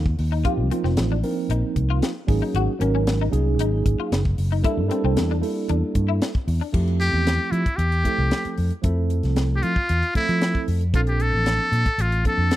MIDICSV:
0, 0, Header, 1, 7, 480
1, 0, Start_track
1, 0, Tempo, 524476
1, 410, Time_signature, 4, 2, 24, 8
1, 11500, End_track
2, 0, Start_track
2, 0, Title_t, "Muted trumpet"
2, 0, Program_c, 0, 59
2, 6409, Note_on_c, 0, 67, 91
2, 6874, Note_on_c, 0, 64, 77
2, 6888, Note_off_c, 0, 67, 0
2, 7102, Note_on_c, 0, 67, 88
2, 7116, Note_off_c, 0, 64, 0
2, 7835, Note_off_c, 0, 67, 0
2, 8750, Note_on_c, 0, 67, 70
2, 8810, Note_on_c, 0, 65, 98
2, 8824, Note_off_c, 0, 67, 0
2, 9291, Note_off_c, 0, 65, 0
2, 9299, Note_on_c, 0, 64, 82
2, 9742, Note_off_c, 0, 64, 0
2, 10024, Note_on_c, 0, 65, 74
2, 10075, Note_off_c, 0, 65, 0
2, 10140, Note_on_c, 0, 67, 80
2, 10265, Note_on_c, 0, 69, 101
2, 10278, Note_off_c, 0, 67, 0
2, 10989, Note_on_c, 0, 65, 82
2, 11003, Note_off_c, 0, 69, 0
2, 11222, Note_off_c, 0, 65, 0
2, 11231, Note_on_c, 0, 69, 85
2, 11500, Note_off_c, 0, 69, 0
2, 11500, End_track
3, 0, Start_track
3, 0, Title_t, "Clean electric guitar"
3, 0, Program_c, 1, 27
3, 293, Note_on_c, 1, 63, 67
3, 391, Note_off_c, 1, 63, 0
3, 410, Note_on_c, 1, 65, 91
3, 608, Note_off_c, 1, 65, 0
3, 654, Note_on_c, 1, 60, 74
3, 752, Note_off_c, 1, 60, 0
3, 772, Note_on_c, 1, 60, 67
3, 970, Note_off_c, 1, 60, 0
3, 1022, Note_on_c, 1, 62, 66
3, 1216, Note_off_c, 1, 62, 0
3, 1380, Note_on_c, 1, 63, 81
3, 1574, Note_off_c, 1, 63, 0
3, 1741, Note_on_c, 1, 65, 67
3, 1934, Note_off_c, 1, 65, 0
3, 2215, Note_on_c, 1, 63, 67
3, 2311, Note_off_c, 1, 63, 0
3, 2341, Note_on_c, 1, 66, 95
3, 2534, Note_off_c, 1, 66, 0
3, 2576, Note_on_c, 1, 61, 75
3, 2673, Note_off_c, 1, 61, 0
3, 2698, Note_on_c, 1, 61, 66
3, 2892, Note_off_c, 1, 61, 0
3, 2942, Note_on_c, 1, 63, 75
3, 3135, Note_off_c, 1, 63, 0
3, 3299, Note_on_c, 1, 63, 83
3, 3492, Note_off_c, 1, 63, 0
3, 3658, Note_on_c, 1, 65, 68
3, 3852, Note_off_c, 1, 65, 0
3, 4137, Note_on_c, 1, 63, 67
3, 4231, Note_off_c, 1, 63, 0
3, 4255, Note_on_c, 1, 64, 91
3, 4449, Note_off_c, 1, 64, 0
3, 4497, Note_on_c, 1, 60, 70
3, 4592, Note_off_c, 1, 60, 0
3, 4619, Note_on_c, 1, 60, 65
3, 4812, Note_off_c, 1, 60, 0
3, 4861, Note_on_c, 1, 62, 69
3, 5053, Note_off_c, 1, 62, 0
3, 5213, Note_on_c, 1, 62, 76
3, 5408, Note_off_c, 1, 62, 0
3, 5569, Note_on_c, 1, 64, 63
3, 5766, Note_off_c, 1, 64, 0
3, 6052, Note_on_c, 1, 62, 62
3, 6148, Note_off_c, 1, 62, 0
3, 11500, End_track
4, 0, Start_track
4, 0, Title_t, "Tine electric piano"
4, 0, Program_c, 2, 4
4, 404, Note_on_c, 2, 53, 77
4, 405, Note_on_c, 2, 58, 64
4, 409, Note_on_c, 2, 60, 67
4, 413, Note_on_c, 2, 63, 65
4, 421, Note_on_c, 2, 67, 82
4, 608, Note_off_c, 2, 53, 0
4, 609, Note_off_c, 2, 58, 0
4, 611, Note_off_c, 2, 60, 0
4, 613, Note_off_c, 2, 63, 0
4, 617, Note_off_c, 2, 67, 0
4, 646, Note_on_c, 2, 53, 75
4, 649, Note_on_c, 2, 58, 69
4, 652, Note_on_c, 2, 60, 66
4, 660, Note_on_c, 2, 63, 63
4, 665, Note_on_c, 2, 65, 81
4, 1051, Note_off_c, 2, 53, 0
4, 1053, Note_off_c, 2, 58, 0
4, 1054, Note_off_c, 2, 60, 0
4, 1058, Note_off_c, 2, 63, 0
4, 1061, Note_off_c, 2, 65, 0
4, 1120, Note_on_c, 2, 53, 73
4, 1122, Note_on_c, 2, 58, 69
4, 1130, Note_on_c, 2, 60, 72
4, 1131, Note_on_c, 2, 63, 62
4, 1134, Note_on_c, 2, 70, 78
4, 1931, Note_off_c, 2, 53, 0
4, 1931, Note_off_c, 2, 58, 0
4, 1935, Note_off_c, 2, 60, 0
4, 1936, Note_off_c, 2, 63, 0
4, 1937, Note_off_c, 2, 70, 0
4, 2078, Note_on_c, 2, 54, 84
4, 2082, Note_on_c, 2, 58, 84
4, 2084, Note_on_c, 2, 61, 81
4, 2090, Note_on_c, 2, 63, 80
4, 2094, Note_on_c, 2, 68, 88
4, 2486, Note_off_c, 2, 54, 0
4, 2488, Note_off_c, 2, 58, 0
4, 2489, Note_off_c, 2, 61, 0
4, 2492, Note_off_c, 2, 63, 0
4, 2494, Note_off_c, 2, 68, 0
4, 2553, Note_on_c, 2, 54, 76
4, 2554, Note_on_c, 2, 58, 73
4, 2560, Note_on_c, 2, 61, 72
4, 2563, Note_on_c, 2, 63, 65
4, 2569, Note_on_c, 2, 70, 81
4, 2963, Note_off_c, 2, 54, 0
4, 2964, Note_off_c, 2, 58, 0
4, 2967, Note_off_c, 2, 61, 0
4, 2969, Note_off_c, 2, 63, 0
4, 2972, Note_off_c, 2, 70, 0
4, 3025, Note_on_c, 2, 54, 75
4, 3033, Note_on_c, 2, 58, 68
4, 3037, Note_on_c, 2, 61, 69
4, 3040, Note_on_c, 2, 63, 69
4, 3044, Note_on_c, 2, 68, 88
4, 3842, Note_off_c, 2, 54, 0
4, 3846, Note_off_c, 2, 58, 0
4, 3848, Note_off_c, 2, 61, 0
4, 3849, Note_off_c, 2, 63, 0
4, 3851, Note_off_c, 2, 68, 0
4, 4230, Note_on_c, 2, 55, 81
4, 4233, Note_on_c, 2, 58, 69
4, 4240, Note_on_c, 2, 62, 69
4, 4242, Note_on_c, 2, 64, 73
4, 4247, Note_on_c, 2, 69, 85
4, 4439, Note_off_c, 2, 55, 0
4, 4441, Note_off_c, 2, 58, 0
4, 4444, Note_off_c, 2, 62, 0
4, 4446, Note_off_c, 2, 64, 0
4, 4448, Note_off_c, 2, 69, 0
4, 4466, Note_on_c, 2, 55, 72
4, 4468, Note_on_c, 2, 58, 68
4, 4470, Note_on_c, 2, 62, 66
4, 4475, Note_on_c, 2, 64, 70
4, 4479, Note_on_c, 2, 69, 83
4, 4879, Note_off_c, 2, 55, 0
4, 4880, Note_off_c, 2, 58, 0
4, 4881, Note_off_c, 2, 62, 0
4, 4884, Note_off_c, 2, 64, 0
4, 4886, Note_off_c, 2, 69, 0
4, 4947, Note_on_c, 2, 55, 72
4, 4952, Note_on_c, 2, 58, 71
4, 4956, Note_on_c, 2, 62, 66
4, 4958, Note_on_c, 2, 64, 71
4, 4964, Note_on_c, 2, 69, 76
4, 5763, Note_off_c, 2, 55, 0
4, 5765, Note_off_c, 2, 58, 0
4, 5767, Note_off_c, 2, 62, 0
4, 5768, Note_off_c, 2, 64, 0
4, 5771, Note_off_c, 2, 69, 0
4, 6153, Note_on_c, 2, 53, 74
4, 6155, Note_on_c, 2, 57, 67
4, 6157, Note_on_c, 2, 60, 67
4, 6165, Note_on_c, 2, 64, 64
4, 6168, Note_on_c, 2, 67, 78
4, 6966, Note_off_c, 2, 53, 0
4, 6967, Note_off_c, 2, 57, 0
4, 6968, Note_off_c, 2, 60, 0
4, 6972, Note_off_c, 2, 64, 0
4, 6974, Note_off_c, 2, 67, 0
4, 7358, Note_on_c, 2, 53, 62
4, 7359, Note_on_c, 2, 57, 59
4, 7363, Note_on_c, 2, 60, 61
4, 7368, Note_on_c, 2, 64, 59
4, 7375, Note_on_c, 2, 69, 69
4, 7969, Note_off_c, 2, 53, 0
4, 7969, Note_off_c, 2, 57, 0
4, 7971, Note_off_c, 2, 60, 0
4, 7973, Note_off_c, 2, 64, 0
4, 7977, Note_off_c, 2, 69, 0
4, 8073, Note_on_c, 2, 53, 76
4, 8080, Note_on_c, 2, 57, 68
4, 8086, Note_on_c, 2, 60, 67
4, 8089, Note_on_c, 2, 64, 71
4, 8094, Note_on_c, 2, 69, 78
4, 8888, Note_off_c, 2, 53, 0
4, 8892, Note_off_c, 2, 57, 0
4, 8895, Note_off_c, 2, 60, 0
4, 8896, Note_off_c, 2, 64, 0
4, 8899, Note_off_c, 2, 69, 0
4, 9281, Note_on_c, 2, 53, 62
4, 9281, Note_on_c, 2, 57, 59
4, 9288, Note_on_c, 2, 60, 61
4, 9290, Note_on_c, 2, 64, 58
4, 9298, Note_on_c, 2, 69, 74
4, 9892, Note_off_c, 2, 53, 0
4, 9892, Note_off_c, 2, 57, 0
4, 9896, Note_off_c, 2, 60, 0
4, 9897, Note_off_c, 2, 64, 0
4, 9901, Note_off_c, 2, 69, 0
4, 10002, Note_on_c, 2, 53, 64
4, 10005, Note_on_c, 2, 58, 56
4, 10011, Note_on_c, 2, 60, 56
4, 10014, Note_on_c, 2, 62, 56
4, 10020, Note_on_c, 2, 69, 68
4, 10815, Note_off_c, 2, 53, 0
4, 10816, Note_off_c, 2, 58, 0
4, 10820, Note_off_c, 2, 60, 0
4, 10821, Note_off_c, 2, 62, 0
4, 10824, Note_off_c, 2, 69, 0
4, 11201, Note_on_c, 2, 53, 65
4, 11204, Note_on_c, 2, 58, 58
4, 11212, Note_on_c, 2, 60, 61
4, 11216, Note_on_c, 2, 62, 56
4, 11219, Note_on_c, 2, 69, 70
4, 11500, Note_off_c, 2, 53, 0
4, 11500, Note_off_c, 2, 58, 0
4, 11500, Note_off_c, 2, 60, 0
4, 11500, Note_off_c, 2, 62, 0
4, 11500, Note_off_c, 2, 69, 0
4, 11500, End_track
5, 0, Start_track
5, 0, Title_t, "Fingered electric bass"
5, 0, Program_c, 3, 33
5, 0, Note_on_c, 3, 39, 79
5, 153, Note_off_c, 3, 39, 0
5, 174, Note_on_c, 3, 39, 80
5, 393, Note_off_c, 3, 39, 0
5, 525, Note_on_c, 3, 36, 77
5, 637, Note_off_c, 3, 36, 0
5, 771, Note_on_c, 3, 29, 92
5, 880, Note_off_c, 3, 29, 0
5, 886, Note_on_c, 3, 33, 84
5, 1108, Note_off_c, 3, 33, 0
5, 1367, Note_on_c, 3, 34, 88
5, 1479, Note_off_c, 3, 34, 0
5, 1609, Note_on_c, 3, 36, 81
5, 1829, Note_off_c, 3, 36, 0
5, 2092, Note_on_c, 3, 32, 98
5, 2202, Note_off_c, 3, 32, 0
5, 2326, Note_on_c, 3, 32, 87
5, 2438, Note_off_c, 3, 32, 0
5, 2566, Note_on_c, 3, 32, 80
5, 3010, Note_off_c, 3, 32, 0
5, 3045, Note_on_c, 3, 36, 82
5, 3285, Note_off_c, 3, 36, 0
5, 3285, Note_on_c, 3, 32, 104
5, 3506, Note_off_c, 3, 32, 0
5, 3530, Note_on_c, 3, 32, 85
5, 3640, Note_off_c, 3, 32, 0
5, 3769, Note_on_c, 3, 30, 84
5, 3988, Note_off_c, 3, 30, 0
5, 4011, Note_on_c, 3, 30, 80
5, 4229, Note_off_c, 3, 30, 0
5, 4369, Note_on_c, 3, 43, 73
5, 4477, Note_off_c, 3, 43, 0
5, 4613, Note_on_c, 3, 36, 93
5, 4719, Note_off_c, 3, 36, 0
5, 4735, Note_on_c, 3, 40, 81
5, 4951, Note_off_c, 3, 40, 0
5, 5214, Note_on_c, 3, 40, 85
5, 5321, Note_off_c, 3, 40, 0
5, 5447, Note_on_c, 3, 43, 84
5, 5667, Note_off_c, 3, 43, 0
5, 5927, Note_on_c, 3, 40, 95
5, 6037, Note_off_c, 3, 40, 0
5, 6171, Note_on_c, 3, 41, 82
5, 6500, Note_off_c, 3, 41, 0
5, 6529, Note_on_c, 3, 40, 79
5, 6748, Note_off_c, 3, 40, 0
5, 6882, Note_on_c, 3, 53, 74
5, 6995, Note_off_c, 3, 53, 0
5, 7122, Note_on_c, 3, 40, 81
5, 7345, Note_off_c, 3, 40, 0
5, 7489, Note_on_c, 3, 36, 70
5, 7598, Note_off_c, 3, 36, 0
5, 7854, Note_on_c, 3, 41, 73
5, 7962, Note_off_c, 3, 41, 0
5, 8089, Note_on_c, 3, 41, 82
5, 8421, Note_off_c, 3, 41, 0
5, 8452, Note_on_c, 3, 36, 80
5, 8781, Note_off_c, 3, 36, 0
5, 8817, Note_on_c, 3, 53, 72
5, 8925, Note_off_c, 3, 53, 0
5, 9057, Note_on_c, 3, 40, 81
5, 9165, Note_off_c, 3, 40, 0
5, 9416, Note_on_c, 3, 53, 83
5, 9635, Note_off_c, 3, 53, 0
5, 9775, Note_on_c, 3, 41, 78
5, 9994, Note_off_c, 3, 41, 0
5, 10010, Note_on_c, 3, 34, 81
5, 10343, Note_off_c, 3, 34, 0
5, 10374, Note_on_c, 3, 33, 78
5, 10594, Note_off_c, 3, 33, 0
5, 10725, Note_on_c, 3, 46, 77
5, 10840, Note_off_c, 3, 46, 0
5, 10966, Note_on_c, 3, 33, 91
5, 11191, Note_off_c, 3, 33, 0
5, 11327, Note_on_c, 3, 41, 71
5, 11441, Note_off_c, 3, 41, 0
5, 11500, End_track
6, 0, Start_track
6, 0, Title_t, "Muted fingered electric bass strokes"
6, 411, Note_on_c, 9, 29, 33
6, 503, Note_off_c, 9, 29, 0
6, 3651, Note_on_c, 9, 29, 35
6, 3743, Note_off_c, 9, 29, 0
6, 4250, Note_on_c, 9, 29, 33
6, 4342, Note_off_c, 9, 29, 0
6, 7011, Note_on_c, 9, 29, 31
6, 7102, Note_off_c, 9, 29, 0
6, 7735, Note_on_c, 9, 29, 35
6, 7827, Note_off_c, 9, 29, 0
6, 9292, Note_on_c, 9, 29, 34
6, 9384, Note_off_c, 9, 29, 0
6, 10853, Note_on_c, 9, 29, 35
6, 10945, Note_off_c, 9, 29, 0
6, 11500, End_track
7, 0, Start_track
7, 0, Title_t, "Drums"
7, 52, Note_on_c, 9, 36, 78
7, 144, Note_off_c, 9, 36, 0
7, 171, Note_on_c, 9, 46, 71
7, 262, Note_off_c, 9, 46, 0
7, 411, Note_on_c, 9, 36, 101
7, 411, Note_on_c, 9, 42, 71
7, 502, Note_off_c, 9, 42, 0
7, 503, Note_off_c, 9, 36, 0
7, 654, Note_on_c, 9, 42, 61
7, 745, Note_off_c, 9, 42, 0
7, 774, Note_on_c, 9, 38, 33
7, 866, Note_off_c, 9, 38, 0
7, 887, Note_on_c, 9, 42, 71
7, 891, Note_on_c, 9, 38, 96
7, 978, Note_off_c, 9, 42, 0
7, 982, Note_off_c, 9, 38, 0
7, 1131, Note_on_c, 9, 46, 65
7, 1223, Note_off_c, 9, 46, 0
7, 1372, Note_on_c, 9, 42, 73
7, 1464, Note_off_c, 9, 42, 0
7, 1612, Note_on_c, 9, 36, 76
7, 1612, Note_on_c, 9, 42, 53
7, 1703, Note_off_c, 9, 36, 0
7, 1703, Note_off_c, 9, 42, 0
7, 1853, Note_on_c, 9, 42, 69
7, 1856, Note_on_c, 9, 38, 99
7, 1944, Note_off_c, 9, 42, 0
7, 1948, Note_off_c, 9, 38, 0
7, 2091, Note_on_c, 9, 36, 97
7, 2091, Note_on_c, 9, 46, 70
7, 2182, Note_off_c, 9, 36, 0
7, 2183, Note_off_c, 9, 46, 0
7, 2331, Note_on_c, 9, 42, 77
7, 2422, Note_off_c, 9, 42, 0
7, 2571, Note_on_c, 9, 42, 60
7, 2662, Note_off_c, 9, 42, 0
7, 2810, Note_on_c, 9, 42, 74
7, 2814, Note_on_c, 9, 38, 98
7, 2902, Note_off_c, 9, 42, 0
7, 2905, Note_off_c, 9, 38, 0
7, 3049, Note_on_c, 9, 42, 61
7, 3141, Note_off_c, 9, 42, 0
7, 3288, Note_on_c, 9, 42, 86
7, 3380, Note_off_c, 9, 42, 0
7, 3530, Note_on_c, 9, 36, 79
7, 3531, Note_on_c, 9, 42, 61
7, 3621, Note_off_c, 9, 36, 0
7, 3623, Note_off_c, 9, 42, 0
7, 3772, Note_on_c, 9, 42, 73
7, 3776, Note_on_c, 9, 38, 97
7, 3864, Note_off_c, 9, 42, 0
7, 3868, Note_off_c, 9, 38, 0
7, 3892, Note_on_c, 9, 36, 79
7, 3984, Note_off_c, 9, 36, 0
7, 4010, Note_on_c, 9, 46, 65
7, 4102, Note_off_c, 9, 46, 0
7, 4250, Note_on_c, 9, 36, 97
7, 4251, Note_on_c, 9, 42, 77
7, 4342, Note_off_c, 9, 36, 0
7, 4343, Note_off_c, 9, 42, 0
7, 4492, Note_on_c, 9, 42, 59
7, 4584, Note_off_c, 9, 42, 0
7, 4728, Note_on_c, 9, 42, 71
7, 4732, Note_on_c, 9, 38, 96
7, 4820, Note_off_c, 9, 42, 0
7, 4824, Note_off_c, 9, 38, 0
7, 4971, Note_on_c, 9, 46, 66
7, 5063, Note_off_c, 9, 46, 0
7, 5209, Note_on_c, 9, 42, 77
7, 5301, Note_off_c, 9, 42, 0
7, 5446, Note_on_c, 9, 42, 55
7, 5448, Note_on_c, 9, 36, 80
7, 5538, Note_off_c, 9, 42, 0
7, 5540, Note_off_c, 9, 36, 0
7, 5690, Note_on_c, 9, 42, 72
7, 5694, Note_on_c, 9, 38, 95
7, 5781, Note_off_c, 9, 42, 0
7, 5785, Note_off_c, 9, 38, 0
7, 5811, Note_on_c, 9, 36, 83
7, 5903, Note_off_c, 9, 36, 0
7, 5931, Note_on_c, 9, 46, 65
7, 6022, Note_off_c, 9, 46, 0
7, 6168, Note_on_c, 9, 36, 93
7, 6169, Note_on_c, 9, 49, 75
7, 6260, Note_off_c, 9, 36, 0
7, 6260, Note_off_c, 9, 49, 0
7, 6294, Note_on_c, 9, 42, 33
7, 6386, Note_off_c, 9, 42, 0
7, 6412, Note_on_c, 9, 42, 54
7, 6504, Note_off_c, 9, 42, 0
7, 6651, Note_on_c, 9, 42, 75
7, 6655, Note_on_c, 9, 38, 89
7, 6743, Note_off_c, 9, 42, 0
7, 6746, Note_off_c, 9, 38, 0
7, 6890, Note_on_c, 9, 42, 52
7, 6981, Note_off_c, 9, 42, 0
7, 7011, Note_on_c, 9, 36, 76
7, 7013, Note_on_c, 9, 42, 36
7, 7102, Note_off_c, 9, 36, 0
7, 7104, Note_off_c, 9, 42, 0
7, 7128, Note_on_c, 9, 42, 73
7, 7220, Note_off_c, 9, 42, 0
7, 7248, Note_on_c, 9, 42, 36
7, 7340, Note_off_c, 9, 42, 0
7, 7369, Note_on_c, 9, 36, 67
7, 7369, Note_on_c, 9, 42, 56
7, 7460, Note_off_c, 9, 36, 0
7, 7460, Note_off_c, 9, 42, 0
7, 7608, Note_on_c, 9, 42, 72
7, 7612, Note_on_c, 9, 38, 97
7, 7700, Note_off_c, 9, 42, 0
7, 7703, Note_off_c, 9, 38, 0
7, 7733, Note_on_c, 9, 42, 36
7, 7824, Note_off_c, 9, 42, 0
7, 7849, Note_on_c, 9, 46, 65
7, 7940, Note_off_c, 9, 46, 0
7, 7968, Note_on_c, 9, 42, 32
7, 8059, Note_off_c, 9, 42, 0
7, 8087, Note_on_c, 9, 42, 72
7, 8090, Note_on_c, 9, 36, 93
7, 8178, Note_off_c, 9, 42, 0
7, 8181, Note_off_c, 9, 36, 0
7, 8329, Note_on_c, 9, 42, 54
7, 8421, Note_off_c, 9, 42, 0
7, 8451, Note_on_c, 9, 42, 33
7, 8455, Note_on_c, 9, 38, 31
7, 8542, Note_off_c, 9, 42, 0
7, 8546, Note_off_c, 9, 38, 0
7, 8568, Note_on_c, 9, 42, 65
7, 8572, Note_on_c, 9, 38, 87
7, 8660, Note_off_c, 9, 42, 0
7, 8663, Note_off_c, 9, 38, 0
7, 8811, Note_on_c, 9, 42, 53
7, 8903, Note_off_c, 9, 42, 0
7, 8933, Note_on_c, 9, 36, 75
7, 9025, Note_off_c, 9, 36, 0
7, 9053, Note_on_c, 9, 42, 72
7, 9145, Note_off_c, 9, 42, 0
7, 9177, Note_on_c, 9, 42, 30
7, 9268, Note_off_c, 9, 42, 0
7, 9292, Note_on_c, 9, 36, 76
7, 9292, Note_on_c, 9, 42, 51
7, 9383, Note_off_c, 9, 42, 0
7, 9384, Note_off_c, 9, 36, 0
7, 9414, Note_on_c, 9, 42, 34
7, 9506, Note_off_c, 9, 42, 0
7, 9532, Note_on_c, 9, 42, 67
7, 9536, Note_on_c, 9, 38, 93
7, 9624, Note_off_c, 9, 42, 0
7, 9627, Note_off_c, 9, 38, 0
7, 9654, Note_on_c, 9, 36, 69
7, 9745, Note_off_c, 9, 36, 0
7, 9774, Note_on_c, 9, 46, 61
7, 9865, Note_off_c, 9, 46, 0
7, 9892, Note_on_c, 9, 42, 29
7, 9984, Note_off_c, 9, 42, 0
7, 10011, Note_on_c, 9, 36, 98
7, 10011, Note_on_c, 9, 42, 69
7, 10102, Note_off_c, 9, 42, 0
7, 10103, Note_off_c, 9, 36, 0
7, 10131, Note_on_c, 9, 42, 32
7, 10222, Note_off_c, 9, 42, 0
7, 10249, Note_on_c, 9, 42, 54
7, 10340, Note_off_c, 9, 42, 0
7, 10490, Note_on_c, 9, 42, 72
7, 10493, Note_on_c, 9, 38, 83
7, 10581, Note_off_c, 9, 42, 0
7, 10585, Note_off_c, 9, 38, 0
7, 10734, Note_on_c, 9, 42, 54
7, 10825, Note_off_c, 9, 42, 0
7, 10854, Note_on_c, 9, 36, 77
7, 10855, Note_on_c, 9, 42, 33
7, 10945, Note_off_c, 9, 36, 0
7, 10946, Note_off_c, 9, 42, 0
7, 10971, Note_on_c, 9, 42, 81
7, 11062, Note_off_c, 9, 42, 0
7, 11095, Note_on_c, 9, 42, 36
7, 11186, Note_off_c, 9, 42, 0
7, 11212, Note_on_c, 9, 36, 73
7, 11212, Note_on_c, 9, 42, 53
7, 11303, Note_off_c, 9, 42, 0
7, 11304, Note_off_c, 9, 36, 0
7, 11451, Note_on_c, 9, 42, 70
7, 11454, Note_on_c, 9, 38, 94
7, 11500, Note_off_c, 9, 38, 0
7, 11500, Note_off_c, 9, 42, 0
7, 11500, End_track
0, 0, End_of_file